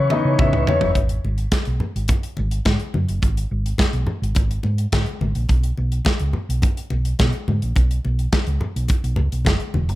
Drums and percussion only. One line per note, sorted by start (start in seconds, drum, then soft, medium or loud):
0.10 mid tom medium
0.10 muted conga medium
0.39 kick loud
0.39 mid tom medium
0.39 high conga medium
0.53 mid tom medium
0.67 floor tom loud
0.67 high conga medium
0.81 floor tom loud
0.95 kick medium
0.95 closed hi-hat soft
0.95 muted conga soft
1.09 closed hi-hat soft
1.25 muted conga soft
1.38 closed hi-hat soft
1.52 kick loud
1.52 snare loud
1.52 closed hi-hat medium
1.52 high conga medium
1.65 closed hi-hat soft
1.80 low conga medium
1.96 closed hi-hat soft
2.08 kick loud
2.08 closed hi-hat medium
2.08 muted conga soft
2.08 low conga medium
2.23 closed hi-hat soft
2.37 muted conga soft
2.51 closed hi-hat soft
2.65 kick loud
2.65 snare medium
2.65 closed hi-hat medium
2.65 high conga medium
2.79 closed hi-hat soft
2.94 high conga medium
3.09 closed hi-hat soft
3.22 kick medium
3.22 closed hi-hat soft
3.22 muted conga soft
3.37 closed hi-hat soft
3.66 closed hi-hat soft
3.78 kick loud
3.78 snare loud
3.78 closed hi-hat medium
3.78 high conga medium
3.93 closed hi-hat soft
4.07 low conga medium
4.24 closed hi-hat medium
4.35 kick loud
4.35 closed hi-hat medium
4.35 muted conga soft
4.51 closed hi-hat soft
4.63 muted conga soft
4.78 closed hi-hat medium
4.92 kick loud
4.92 snare loud
4.92 closed hi-hat medium
4.92 high conga medium
5.06 closed hi-hat soft
5.21 high conga medium
5.35 closed hi-hat soft
5.49 kick medium
5.49 closed hi-hat soft
5.49 muted conga soft
5.64 closed hi-hat soft
5.77 muted conga soft
5.92 closed hi-hat soft
6.05 kick loud
6.05 snare loud
6.05 closed hi-hat medium
6.05 high conga medium
6.19 closed hi-hat soft
6.33 low conga medium
6.50 closed hi-hat medium
6.62 kick loud
6.62 closed hi-hat medium
6.62 muted conga soft
6.62 low conga medium
6.77 closed hi-hat soft
6.90 muted conga soft
7.05 closed hi-hat soft
7.19 kick loud
7.19 snare loud
7.19 closed hi-hat medium
7.19 high conga medium
7.33 closed hi-hat soft
7.48 high conga medium
7.62 closed hi-hat soft
7.76 kick medium
7.76 closed hi-hat medium
7.76 muted conga soft
7.91 closed hi-hat soft
8.05 muted conga soft
8.19 closed hi-hat soft
8.32 kick loud
8.32 snare loud
8.32 closed hi-hat medium
8.32 high conga medium
8.47 closed hi-hat soft
8.61 low conga medium
8.76 closed hi-hat medium
8.88 kick loud
8.88 closed hi-hat medium
8.88 muted conga soft
9.04 closed hi-hat medium
9.16 muted conga medium
9.16 low conga medium
9.32 closed hi-hat soft
9.45 kick loud
9.45 snare loud
9.45 closed hi-hat medium
9.45 high conga medium
9.60 closed hi-hat soft
9.74 high conga medium
9.89 closed hi-hat soft